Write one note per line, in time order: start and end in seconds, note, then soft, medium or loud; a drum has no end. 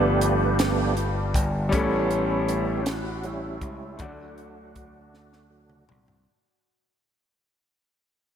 0.00 1.31 G1 medium
0.00 0.55 G2 soft
0.00 0.55 F3 soft
0.00 1.66 G3 medium
0.00 0.56 A3 soft
0.00 0.59 B3 medium
0.00 0.94 D4 soft
0.00 1.68 D4 soft
0.00 1.68 F4 soft
0.00 0.94 G4 medium
0.00 1.73 B4 medium
0.21 closed hi-hat medium
0.59 0.93 F3 soft
0.59 0.94 A3 soft
0.59 0.94 B3 soft
0.59 snare loud
0.59 closed hi-hat medium
0.97 closed hi-hat soft
1.34 1.69 G1 medium
1.34 kick medium
1.34 closed hi-hat medium
1.69 2.82 A2 medium
1.69 3.94 G3 medium
1.69 2.81 G3 soft
1.69 2.82 B3 soft
1.69 3.95 C#4 medium
1.69 2.82 C#4 soft
1.69 3.96 E4 medium
1.69 kick medium
1.69 closed hi-hat medium
1.73 3.58 A1 medium
1.73 3.97 A4 medium
2.11 closed hi-hat soft
2.49 closed hi-hat medium
2.77 2.85 G4 medium
2.86 3.27 F#4 medium
2.86 snare loud
2.86 closed hi-hat medium
3.24 3.96 G3 medium
3.24 3.96 C#4 medium
3.24 4.03 E4 medium
3.24 closed hi-hat soft
3.61 3.97 C#2 medium
3.61 kick medium
3.61 closed hi-hat medium
3.97 5.85 D2 medium
3.97 5.09 D3 soft
3.97 5.10 F#3 soft
3.97 6.22 A3 soft
3.97 5.49 A3 medium
3.97 6.23 D4 soft
3.97 5.49 D4 soft
3.97 6.24 F#4 soft
3.97 kick loud
3.97 closed hi-hat medium
4.03 5.87 F#4 medium
4.03 6.25 D5 soft
4.38 closed hi-hat soft
4.76 kick medium
4.76 closed hi-hat medium
5.14 snare soft
5.33 snare soft
5.49 5.85 F#3 soft
5.49 5.85 A3 soft
5.49 5.85 D4 soft
5.70 mid tom medium
5.89 6.25 C2 medium
5.89 mid tom medium
6.08 floor tom medium